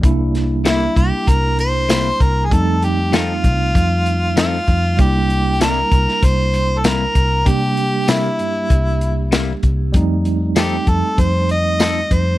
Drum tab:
HH |x-x-x-x-x-x-x-x-|x-x-x-x-x-x-x-x-|x-x-x-x-x-x-x-x-|x-x-x-x-x-x-x-x-|
TB |----x-------x---|----x-------x---|----x-------x---|----x-------x---|
SD |--o-o-------o---|----o-------o---|----o--o----o---|----o-------o---|
BD |o-----o-o-----o-|o-----o-o-----o-|o-----o-o-----o-|o-------o-----o-|

HH |x-x-x-x-x-x-x-x-|
TB |----x-------x---|
SD |----o-------o---|
BD |o-----o-o-----o-|